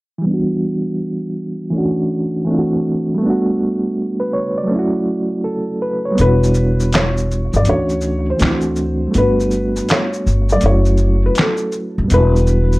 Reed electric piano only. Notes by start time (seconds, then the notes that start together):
0.18 E3 G3
0.26 B3 D4
0.34 F#4
1.70 E3 A3 C#4
1.76 D4 F#4
2.45 E3 A3 C4
2.50 D4 F4
2.59 F#4
3.14 G3 A3
3.22 B3 D4
3.30 F#4
4.20 B4
4.33 C#5
4.58 D5
4.63 F#3 A3
4.71 C#4 E4
4.79 F#4
5.44 A4
5.82 B4
6.05 C#5
6.11 G3 B3
6.19 D4 E4
6.27 F#4
7.63 E3 A3 C#4
7.68 D4 F#4
8.37 E3 A3 C4
8.43 D4 E4
8.51 F#4
9.07 G3 A3
9.15 B3 D4
9.23 F#4
10.56 F#3 A3
10.63 C#4 E4
10.71 F#4
12.04 G3 B3
12.12 D4 E4
12.20 F#4